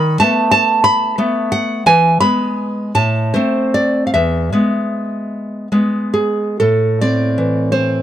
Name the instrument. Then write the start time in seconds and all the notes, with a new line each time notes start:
nylon-string guitar
Already playing: D#3 B5
0.20 A3 B3 A5
0.51 A5
0.84 B5
1.18 A3 B3
1.52 F#5
1.86 E3 G#5
2.20 G#3 B3 B5
2.95 A2 A5
3.34 A3 C4 C5
3.74 D5
4.07 F5
4.14 E2 E5
4.52 G#3 B3
5.72 G#3 B3
6.14 G#4
6.60 A2 A4
7.01 C4 D5
7.38 E3
7.72 C4 C5